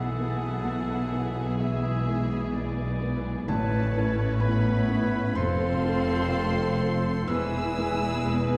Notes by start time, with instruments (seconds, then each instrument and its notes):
Already playing: felt piano B1 B2 F#5, double bass section B1, cello section B2, harp B2 B4, french horn section F#3, viola section B3 E4, clarinet G#4, violin section G#4 F#5, flute section A4, oboe E5
0.01 harp E3
0.17 felt piano B3 E4 B4
0.31 harp E4
0.63 felt piano B1 B2, harp B4
0.96 harp G#5
1.12 felt piano B3 E4 B4
1.28 harp B4
1.58 felt piano B1 B2 E5, french horn section E3, harp B3, flute section G#4, clarinet G#4, oboe E5, violin section E5
1.91 harp G#3
2.07 felt piano G#3 E4 B4
2.21 harp E4
2.53 felt piano B1 B2, harp B4, oboe D5
2.86 harp G#4
3.01 felt piano G#3 E4 B4
3.17 harp B4
3.47 felt piano A1 A2 A5, double bass section A1, cello section A2, timpani A2, harp A2, french horn section A3, viola section C#4, clarinet B4, violin section B4 A5, flute section C#5, oboe C#5
3.79 harp C#4
3.95 felt piano C#4 E4 B4
4.10 harp E4
4.40 felt piano A1 A2 B5, french horn section B3, harp B4, clarinet B4, oboe C#5, flute section E5, violin section B5
4.71 harp C#5
4.87 felt piano C#4 E4 B4
5.03 harp B4
5.34 felt piano F1 F2 C6, double bass section F1, harp F2, cello section F2, french horn section C4, viola section C4 F4, violin section A4 C6, clarinet A4, oboe C5, flute section F5
5.67 harp C4
5.85 felt piano C4 F4 A4
6.00 harp F4
6.31 felt piano F1 F2, harp A4
6.64 harp C5
6.82 felt piano C4 F4 A4
6.96 harp A4
7.28 double bass section E1, felt piano E1 E2 E6, harp E2, cello section E2, viola section G#3 E4, french horn section E4, clarinet G#4, violin section B4 E6, oboe B4, flute section G#5
7.61 harp G#3
7.77 felt piano G#3 E4 B4
7.93 harp E4
8.25 felt piano E1 E2, harp B4